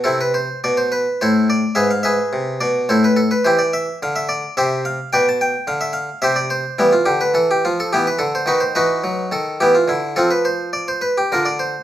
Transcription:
<<
  \new Staff \with { instrumentName = "Harpsichord" } { \time 3/4 \key a \minor \tempo 4 = 107 <c' e' a'>16 b'16 c''8 d''16 c''16 b'8 <e' a' c''>8 d''8 | <gis' b' e''>16 f''16 <gis' b' e''>4 d''8 <e' a' c''>16 b'16 a'16 b'16 | <e' g' c''>16 d''16 e''8 f''16 e''16 d''8 <g' c'' e''>8 f''8 | <b' d'' g''>16 a''16 g''8 f''16 e''16 f''8 <g' c'' e''>16 d''16 c''8 |
<g b e'>16 f'16 g'16 b'16 a'16 g'16 f'16 a'16 <b e' g'>16 b'16 a'16 c''16 | <dis' fis' b'>16 c''16 <dis' fis' b'>4 a'8 <b e' g'>16 f'16 e'8 | <c' f' a'>16 b'16 c''8 d''16 c''16 b'16 g'16 <d' f' bes'>16 d''16 c''8 | }
  \new Staff \with { instrumentName = "Harpsichord" } { \clef bass \time 3/4 \key a \minor c4 b,4 a,4 | gis,4 c8 b,8 a,4 | e4 d4 c4 | b,4 d4 c4 |
e8 d8 e8 f8 e8 d8 | dis8 e8 fis8 dis8 e8 d8 | f2 d4 | }
>>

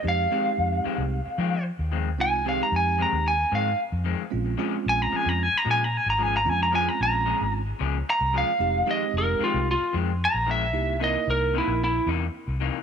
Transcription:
<<
  \new Staff \with { instrumentName = "Lead electric guitar" } { \time 4/4 \key f \minor \tempo 4 = 112 f''2. r4 | aes''8 f''16 bes''16 aes''8 bes''8 aes''8 f''8 r4 | r4 aes''16 bes''16 aes''16 bes''16 aes''16 bes''16 aes''16 bes''16 aes''16 bes''16 aes''16 bes''16 | aes''16 bes''16 aes''16 bes''16 bes''4 r4 bes''8 f''8~ |
f''8 ees''8 bes'8 f'8 f'8 r8 bes''8 e''8~ | e''8 dis''8 bes'8 e'8 e'8 r4. | }
  \new Staff \with { instrumentName = "Tine electric piano" } { \time 4/4 \key f \minor <aes c' ees' g'>8 <aes c' ees' g'>4. r2 | <aes c' ees' f'>8 <aes c' ees' g'>4. r2 | <aes c' des' f'>8 <aes c' des' f'>4. r2 | <aes c' des' f'>8 <aes c' des' f'>4. r2 |
<aes c' ees' g'>8 <aes c' ees' g'>4. r2 | <bes dis' e' g'>8 <bes dis' e' bes'>4. r2 | }
  \new Staff \with { instrumentName = "Clean electric guitar" } { \clef bass \time 4/4 \key f \minor r8 <f, ees aes c'>8 r8 <f, ees aes c'>8 r8 <f, ees aes c'>8 r8 <f, ees aes c'>8 | r8 <f, ees aes c'>8 r8 <f, ees aes c'>8 r8 <f, ees aes c'>8 r8 <f, ees aes c'>8 | r8 <bes, f aes des'>8 r8 <bes, f aes des'>8 r8 <bes, f aes des'>8 r8 <bes, f aes des'>8 | r8 <bes, f aes des'>8 r8 <bes, f aes des'>8 r8 <bes, f aes des'>8 r8 <bes, f aes des'>8 |
r8 <f, ees aes c'>8 r8 <f, ees aes c'>8 r8 <f, ees aes c'>8 r8 <f, ees aes c'>8 | r8 <c e bes dis'>8 r8 <c e bes dis'>8 r8 <c e bes dis'>8 r8 <c e bes dis'>8 | }
  \new Staff \with { instrumentName = "Fingered electric bass" } { \clef bass \time 4/4 \key f \minor f,8 r8 f,8 r16 c,8 r16 f8. ees,8. | c,4 f,8. ees,8. aes,8 r16 f,8 r16 | bes,,8 r8 bes,,8 r16 f,8 r16 bes,8. aes,,8. | f,4 bes,,8. aes,,8. des,8 r16 c,8 r16 |
f,,8 r8 f,,8 r16 c,8 r16 f,8. bes,,8. | c,4 c,8. bes,,8. e,8 r16 c,8 r16 | }
>>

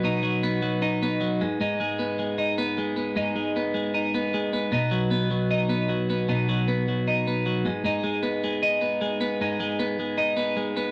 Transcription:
\new Staff \with { instrumentName = "Clean electric guitar" } { \time 4/4 \key gis \minor \tempo 4 = 154 <b, fis b dis'>8 fis8 b8 fis8 dis'8 b8 fis8 gis,8 | <gis, dis'>8 gis8 b8 gis8 dis'8 b8 gis8 b8 | <gis, dis'>8 gis8 b8 gis8 dis'8 b8 gis8 b8 | <b, dis'>8 fis8 b8 fis8 dis'8 b8 fis8 b8 |
<b, dis'>8 fis8 b8 fis8 dis'8 b8 fis8 gis,8 | <gis, dis'>8 gis8 b8 gis8 dis'8 b8 gis8 b8 | <gis, dis'>8 gis8 b8 gis8 dis'8 b8 gis8 b8 | }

